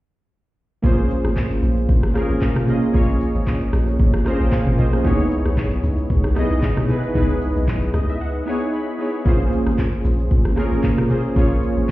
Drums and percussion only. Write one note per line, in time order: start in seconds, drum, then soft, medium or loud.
0.84 kick loud
0.84 shaker medium
0.98 shaker medium
1.10 shaker loud
1.25 cross-stick medium
1.25 shaker medium
1.36 kick medium
1.36 clap loud
1.36 shaker medium
1.51 shaker medium
1.62 shaker loud
1.77 shaker medium
1.89 kick loud
1.89 shaker medium
2.03 cross-stick loud
2.03 shaker soft
2.15 cross-stick medium
2.15 shaker medium
2.30 shaker soft
2.41 kick loud
2.41 clap medium
2.41 shaker medium
2.56 cross-stick loud
2.56 mid tom loud
2.56 shaker medium
2.68 shaker loud
2.82 shaker medium
2.94 kick loud
2.94 shaker medium
3.08 shaker soft
3.20 shaker loud
3.35 shaker medium
3.47 kick medium
3.47 clap loud
3.47 shaker medium
3.61 shaker medium
3.73 cross-stick loud
3.73 shaker medium
3.88 shaker medium
3.99 kick loud
3.99 shaker medium
4.14 cross-stick medium
4.14 shaker soft
4.26 cross-stick medium
4.26 shaker medium
4.40 shaker soft
4.52 kick loud
4.52 clap medium
4.52 shaker medium
4.66 mid tom loud
4.66 shaker medium
4.78 shaker loud
4.92 cross-stick medium
4.92 shaker medium
5.05 kick loud
5.05 shaker medium
5.19 shaker soft
5.31 shaker loud
5.45 cross-stick medium
5.45 shaker medium
5.57 kick medium
5.57 clap medium
5.57 shaker medium
5.71 shaker medium
5.83 shaker medium
5.98 shaker medium
6.10 kick loud
6.10 shaker medium
6.24 cross-stick medium
6.24 shaker medium
6.36 cross-stick medium
6.36 shaker medium
6.51 shaker soft
6.62 kick loud
6.62 clap medium
6.62 shaker medium
6.77 cross-stick loud
6.77 mid tom loud
6.77 shaker medium
6.89 shaker loud
7.03 shaker medium
7.15 kick loud
7.15 shaker medium
7.29 shaker medium
7.42 shaker loud
7.56 shaker medium
7.68 kick medium
7.68 clap loud
7.68 shaker medium
7.82 shaker medium
7.94 cross-stick medium
7.94 shaker loud
8.08 shaker medium
9.26 kick loud
9.26 shaker medium
9.40 shaker medium
9.52 shaker loud
9.67 cross-stick medium
9.67 shaker medium
9.78 kick medium
9.78 clap loud
9.78 shaker medium
9.93 shaker medium
10.04 shaker loud
10.19 shaker medium
10.31 kick loud
10.31 shaker medium
10.45 cross-stick medium
10.45 shaker soft
10.57 cross-stick medium
10.57 shaker medium
10.72 shaker soft
10.83 kick loud
10.83 clap medium
10.83 shaker medium
10.98 cross-stick loud
10.98 mid tom loud
10.98 shaker medium
11.10 shaker loud
11.24 shaker medium
11.36 kick loud
11.36 shaker medium
11.50 shaker soft
11.63 shaker loud
11.77 shaker medium